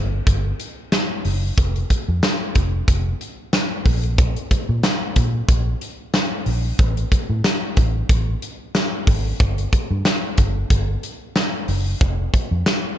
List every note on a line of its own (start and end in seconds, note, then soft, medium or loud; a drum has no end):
0.00 0.19 G1 medium
0.27 0.51 G1 loud
0.27 kick loud
0.27 closed hi-hat loud
0.60 closed hi-hat medium
0.92 snare loud
0.92 closed hi-hat medium
0.92 tambourine medium
1.25 1.49 F#1 loud
1.25 open hi-hat medium
1.58 1.82 F1 loud
1.58 kick loud
1.58 closed hi-hat medium
1.76 closed hi-hat medium
1.90 kick medium
1.90 closed hi-hat medium
2.08 2.19 F2 medium
2.23 snare loud
2.23 closed hi-hat medium
2.23 tambourine medium
2.55 2.80 F1 loud
2.55 kick medium
2.55 closed hi-hat medium
2.88 3.12 F1 loud
2.88 kick medium
2.88 closed hi-hat medium
3.21 closed hi-hat medium
3.53 snare loud
3.53 closed hi-hat medium
3.53 tambourine medium
3.85 4.35 A#1 loud
3.85 kick loud
3.85 open hi-hat medium
4.03 closed hi-hat medium
4.18 kick loud
4.18 closed hi-hat medium
4.36 closed hi-hat medium
4.51 kick medium
4.51 closed hi-hat medium
4.69 4.80 A#2 loud
4.83 snare loud
4.83 closed hi-hat medium
4.83 tambourine medium
5.16 5.41 A#2 loud
5.16 kick medium
5.16 closed hi-hat medium
5.49 5.73 A#1 loud
5.49 kick loud
5.49 closed hi-hat medium
5.81 closed hi-hat medium
6.14 snare loud
6.14 closed hi-hat medium
6.14 tambourine medium
6.46 6.71 A#1 medium
6.46 open hi-hat medium
6.79 7.04 A1 loud
6.79 kick loud
6.79 closed hi-hat medium
6.97 closed hi-hat medium
7.12 kick medium
7.12 closed hi-hat medium
7.30 7.41 A2 loud
7.44 snare loud
7.44 closed hi-hat medium
7.44 tambourine medium
7.77 8.02 A1 medium
7.77 kick medium
7.77 closed hi-hat medium
8.09 8.34 A1 loud
8.09 kick loud
8.09 closed hi-hat medium
8.42 closed hi-hat medium
8.75 snare loud
8.75 closed hi-hat medium
8.75 tambourine medium
9.07 9.32 G#1 medium
9.07 kick loud
9.07 open hi-hat medium
9.40 9.64 G1 loud
9.40 kick loud
9.40 closed hi-hat medium
9.58 closed hi-hat medium
9.73 kick medium
9.73 closed hi-hat medium
9.91 10.02 G2 loud
10.05 snare loud
10.05 closed hi-hat medium
10.05 tambourine medium
10.38 10.62 G1 loud
10.38 kick medium
10.38 closed hi-hat medium
10.70 10.95 G1 medium
10.70 kick loud
10.70 closed hi-hat medium
11.03 closed hi-hat medium
11.36 snare loud
11.36 closed hi-hat medium
11.36 tambourine medium
11.68 11.93 F#1 loud
11.68 open hi-hat medium
12.01 12.25 F1 loud
12.01 kick loud
12.01 closed hi-hat medium
12.34 kick medium
12.34 closed hi-hat medium
12.51 12.62 F2 medium
12.66 snare loud
12.66 closed hi-hat medium
12.66 tambourine medium